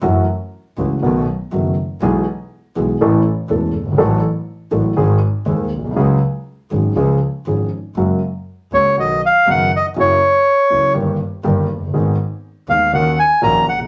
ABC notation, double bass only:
X:1
M:4/4
L:1/8
Q:1/4=121
K:C#phr
V:1 name="Double bass" clef=bass
F,,, z2 C,, B,,, z F,,, z | B,,, z2 B,,, A,,, z E,,, =G,,, | A,,, z2 A,,, G,,, z ^D,, B,,, | C,, z2 G,,, C,, z G,,, z |
[K:F#] F,,, z2 C,, B,,, z F,,, z | F,,, z2 C,, =G,,, z G,,, F,,, | G,,, z2 D,, D,, z A,,, B,,, |]